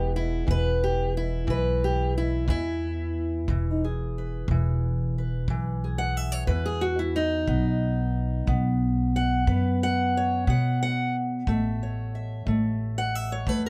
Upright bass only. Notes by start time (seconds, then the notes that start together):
Already playing: E1
0.48 E1
1.48 B1
2.48 E2
3.48 E1
4.48 E1
5.48 B1
6.47 E2
7.48 B1
8.47 B1
9.47 F#2
10.47 B2
11.47 A1
12.46 A1
13.47 E2